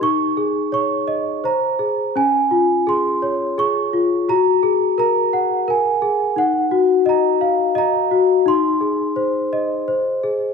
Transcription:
\new Staff \with { instrumentName = "Celesta" } { \time 3/4 \key aes \mixolydian \tempo 4 = 85 << { des'''4 des'''4 bes''4 | aes''4 c'''4 des'''4 | bes''4 bes''4 aes''4 | ges''4 bes''4 bes''4 |
c'''2~ c'''8 r8 | } \\ { ees'8 aes'8 des''8 ees''8 c''8 aes'8 | des'8 f'8 aes'8 des''8 aes'8 f'8 | ges'8 aes'8 bes'8 ges''8 bes'8 aes'8 | ees'8 ges'8 ees''8 f''8 ees''8 ges'8 |
ees'8 aes'8 c''8 ees''8 c''8 aes'8 | } >> }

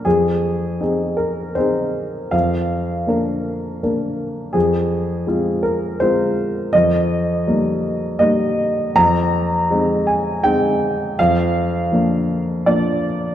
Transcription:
\new Staff \with { instrumentName = "Upright piano" } { \time 3/4 \key aes \lydian \tempo 4 = 81 << { aes'4. bes'8 c''4 | f''2. | aes'4. bes'8 c''4 | ees''2 ees''4 |
bes''4. aes''8 g''4 | f''2 d''8 r8 | } \\ { f,4 <c' ees' aes'>4 <c' ees' aes'>4 | f,4 <bes d' bes'>4 <bes d' bes'>4 | f,4 <aes c' f'>4 <aes c' f'>4 | f,4 <g bes ees'>4 <g bes ees'>4 |
f,4 <aes c' ees'>4 <aes c' ees'>4 | f,4 <f bes d'>4 <f bes d'>4 | } >> }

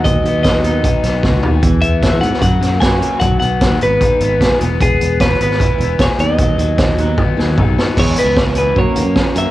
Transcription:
<<
  \new Staff \with { instrumentName = "Clean electric guitar" } { \time 4/4 \key e \major \tempo 4 = 152 dis''4 dis''2~ dis''8 r8 | r8 e''4 fis''8 fis''4 gis''4 | fis''8 fis''4 b'2 r8 | gis'4 b'8 b'4. cis''8 dis''8~ |
dis''2. r4 | cis''8 b'4 b'8 cis''4. e''8 | }
  \new Staff \with { instrumentName = "Overdriven electric guitar" } { \time 4/4 \key e \major fis8 b8 fis8 b8 dis'8 b8 fis'8 dis'8 | e8 b8 e8 b8 fis8 ais8 fis'8 cis'8 | fis8 b8 fis8 b8 dis'8 b8 gis'8 b8 | b8 b8 b8 b8 e'8 b8 gis'8 fis8 |
fis8 fis8 fis8 fis8 b8 fis8 dis'8 b8 | e8 b8 e'8 e8 ais8 ais8 cis'8 ais8 | }
  \new Staff \with { instrumentName = "Clean electric guitar" } { \clef bass \time 4/4 \key e \major b8 <dis b>8 <dis b>8 <dis b dis'>8 <dis b>8 <dis b>8 <dis b>8 <dis b>8 | <e, b, e>8 <e, b,>8 <e, b,>8 <e, b, e>8 <fis, cis fis>8 <fis, cis>8 <fis, cis>8 <fis, cis>8 | <b, fis b>8 <b, fis>8 <b, fis>8 <gis, dis gis>8 <gis, dis>8 <gis, dis>8 r8 <e, e gis>8 | <e, e>8 <e, e>8 <e, e>8 <e, e gis>8 <e, e>8 <e, e>8 <e, e>8 <dis fis b>8 |
r8 <dis fis>8 <dis fis>8 <dis fis b>8 <dis fis>8 <dis fis>8 <dis fis>8 <dis fis>8 | <e, e gis b e' gis'>4. <e, e gis b e' gis'>8 <fis cis' fis' ais'>4. <fis cis' fis' ais'>8 | }
  \new Staff \with { instrumentName = "Picked electric bass" } { \clef bass \time 4/4 \key e \major dis,8 dis,8. dis,16 dis,8 r8 b,,8 cis,8 dis,8 | e,8 e,8. e,16 gis,16 r16 fis,8 fis,8 fis,8 r8 | b,,8 b,,8. dis,16 gis,,8 r8 gis,,8 b,,16 r16 e,,8~ | e,,8 e,,8. e,,16 gis,,8 r8 e,,8 e,,16 r16 dis,8~ |
dis,8 dis,8. dis,16 dis,8 r8 dis,8 b,,8 r8 | e,8 r16 cis,4~ cis,16 fis,16 r16 dis,16 fis,8 r16 fis,16 r16 | }
  \new DrumStaff \with { instrumentName = "Drums" } \drummode { \time 4/4 <hh bd>8 hh8 <hh bd sn>8 hh8 <hh bd>8 <hh sn>8 <bd sn>8 tomfh8 | <hh bd>8 hh8 <hh bd sn>8 hh16 sn16 <hh bd>8 <hh sn>8 <hh bd sn>8 hh8 | <hh bd>8 hh8 <hh bd sn>8 hh8 <hh bd>8 hh8 <hh bd sn>8 hh8 | <hh bd>8 hh8 <hh bd sn>8 hh16 sn16 <hh bd>8 hh8 <hh bd sn>8 hh8 |
<hh bd>8 hh8 <hh bd sn>8 hh8 <bd tommh>8 sn8 <bd toml>8 sn8 | <cymc bd>8 hh8 <bd sn>8 hh8 bd8 hh8 <bd sn>8 hh8 | }
>>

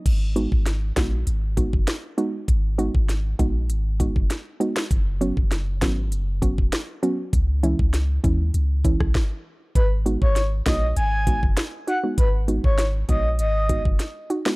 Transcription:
<<
  \new Staff \with { instrumentName = "Soft synth lead" } { \time 4/4 \key gis \minor \tempo 4 = 99 r1 | r1 | r1 | r1 |
b'16 r8 cis''8 r16 dis''8 gis''8. r8. fis''16 r16 | b'16 r8 cis''8 r16 dis''8 dis''8. r4 r16 | }
  \new Staff \with { instrumentName = "Synth pluck" } { \time 4/4 \key gis \minor r8 <gis b dis' fis'>16 r8. <gis b dis' fis'>16 r8. <gis b dis' fis'>16 r8. <gis b dis' fis'>16 r16 | r8 <gis b dis' fis'>16 r8. <gis b dis' fis'>16 r8. <gis b dis' fis'>16 r8. <gis b dis' fis'>16 r16 | r8 <fis b cis' fis'>16 r8. <fis b cis' fis'>16 r8. <fis b cis' fis'>16 r8. <fis b cis' fis'>16 r16 | r8 <e gis cis' e'>16 r8. <e gis cis' e'>16 r8. <e gis cis' e'>16 r4 r16 |
r8 <gis b dis' fis'>16 r8. <gis b dis' fis'>16 r8. <gis b dis' fis'>16 r8. <dis' fis'>16 <gis b dis' fis'>16 | r8 <gis b dis' fis'>16 r8. <gis b dis' fis'>16 r8. <gis b dis' fis'>16 r8. <dis' fis'>16 <gis b dis' fis'>16 | }
  \new Staff \with { instrumentName = "Sub bass" } { \clef bass \time 4/4 \key gis \minor gis,,8. gis,,8. ais,,8 gis,,8. fis,,16 r4 | gis,,8. gis,,8. ais,,8 gis,,8. fis,,16 r4 | fis,,8. fis,,8. gis,,8 fis,,8. e,,16 r4 | cis,8. cis,8. dis,8 cis,8. b,,16 r4 |
gis,,8. gis,,8. ais,,8 gis,,8. fis,,16 r4 | gis,,8. gis,,8. ais,,8 gis,,8. fis,,16 r4 | }
  \new DrumStaff \with { instrumentName = "Drums" } \drummode { \time 4/4 <cymc hh bd>8 hh16 bd16 <hh sn>8 <hh bd sn>8 hh8 <hh bd>16 bd16 <hh sn>8 hh8 | <hh bd>8 hh16 bd16 <hh sn>8 <hh bd>8 hh8 <hh bd>16 bd16 <hh sn>8 hh16 sn16 | <hh bd>8 hh16 bd16 <hh sn>8 <hh bd sn>8 hh8 <hh bd>16 bd16 <hh sn>8 hh8 | <hh bd>8 hh16 bd16 <hh sn>8 <hh bd>8 hh8 <hh bd>16 <bd ss>16 <bd sn>4 |
<hh bd>8 hh16 bd16 <hh sn>8 <hh bd sn>8 hh8 <hh bd>16 bd16 <hh sn>8 hh8 | <hh bd>8 hh16 bd16 <hh sn>8 <hh bd>8 hh8 <hh bd>16 bd16 <hh sn>8 hh16 sn16 | }
>>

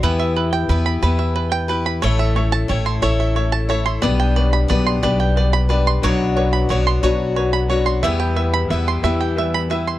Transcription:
<<
  \new Staff \with { instrumentName = "Five-string banjo" } { \time 6/8 \key e \dorian \tempo 4. = 60 b'16 e''16 b'16 g''16 b'16 b''16 b'16 e''16 b'16 g''16 b'16 b''16 | cis''16 e''16 cis''16 a''16 cis''16 c'''16 cis''16 e''16 cis''16 a''16 cis''16 c'''16 | d''16 g''16 d''16 b''16 d''16 c'''16 d''16 g''16 d''16 b''16 d''16 c'''16 | cis''8 cis''16 b''16 cis''16 c'''16 cis''8 cis''16 b''16 cis''16 c'''16 |
e''16 g''16 e''16 b''16 e''16 c'''16 e''16 g''16 e''16 b''16 e''16 c'''16 | }
  \new Staff \with { instrumentName = "Steel-string acoustic guitar" } { \time 6/8 \key e \dorian <e b e' g' b'>4 <b e' g' b'>8 <e b e' g' b'>4 <e' g' b'>8 | <a e' a' cis''>4 <a e' a' cis''>8 <a e' a' cis''>4 <e' a' cis''>8 | <b d' g' b'>4 <b d' g' b'>8 <b d' g'>4 <d' g' b'>8 | <b, fis b d' fis' cis''>4 <b d' fis' cis''>8 <b, fis b d' fis' cis''>4 <b d' fis' cis''>8 |
<e b e' g' b'>4 <b e' g' b'>8 <e b e' g'>4 <e' g' b'>8 | }
  \new Staff \with { instrumentName = "Upright piano" } { \time 6/8 \key e \dorian r2. | <a cis' e' cis'' e''>8 <a cis' e' cis'' e''>8 <a cis' e' cis'' g''>8 <a cis' e' cis'' e''>8 <a cis' e' cis'' e''>8 <a cis' e' cis'' e''>8 | <g b d' b' d''>8 <g b d' b' cis''>8 <g b d' b' d''>8 <g b d' b' d''>8 <g b d' b' d''>8 <g b d' b' d''>8 | <fis cis' d' b' cis''>8 <fis cis' d' b' d''>8 <fis cis' d' b' cis''>8 <fis cis' d' b' cis''>8 <fis cis' d' b' cis''>8 <fis cis' d' b' cis''>8 |
<g b e' b' e''>8 <g b e' b' e''>8 <g b e' b' e''>8 <g b e' b' e''>8 <g b e' b' e''>8 <g b e' b' e''>8 | }
  \new Staff \with { instrumentName = "Upright piano" } { \clef bass \time 6/8 \key e \dorian r2. | <a,, a,>2. | <b,, b,>2. | <b,, b,>2. |
<e, e>2. | }
  \new Staff \with { instrumentName = "Upright bass" } { \clef bass \time 6/8 \key e \dorian e,4 e,8 e,4. | a,,4 a,,8 a,,4. | b,,4 b,,8 b,,4. | b,,4 b,,8 b,,4. |
e,4 e,8 e,4. | }
>>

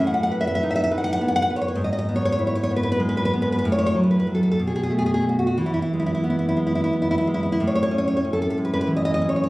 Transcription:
\new Staff \with { instrumentName = "Nylon-string guitar" } { \time 6/8 \key e \major \tempo 4. = 63 << { r32 fis''32 fis''32 fis''32 r32 e''32 e''32 e''32 r32 e''32 e''32 e''32 r32 fis''32 fis''32 fis''32 r32 fis''32 fis''32 fis''32 r32 cis''32 cis''32 cis''32 | r32 dis''32 dis''32 dis''32 r32 cis''32 cis''32 cis''32 r32 cis''32 cis''32 cis''32 r32 b'32 b'32 b'32 r32 b'32 b'32 b'32 r32 b'32 b'32 b'32 | r32 cis''32 cis''32 cis''32 r32 b'32 b'32 b'32 r32 a'32 a'32 a'32 r32 gis'32 gis'32 gis'32 r32 gis'32 gis'32 gis'32 r32 fis'32 fis'32 fis'32 | r32 e'32 e'32 e'32 r32 e'32 e'32 e'32 r32 e'32 e'32 e'32 r32 e'32 e'32 e'32 r32 e'32 e'32 e'32 r32 e'32 e'32 e'32 |
r32 cis''32 cis''32 cis''32 r32 cis''32 cis''32 cis''32 r32 a'32 a'32 a'32 r32 b'32 b'32 b'32 r32 dis''32 dis''32 dis''32 r32 cis''32 cis''32 cis''32 | } \\ { a,8 b'8 dis'8 b'8 b8 b'8 | gis,8 b8 e'8 b8 gis8 b8 | a,8 fis8 fis8 b,8 a8 a8 | e8 gis8 b8 gis8 b8 gis8 |
a,8 cis'8 cis'8 gis8 e8 cis'8 | } >> }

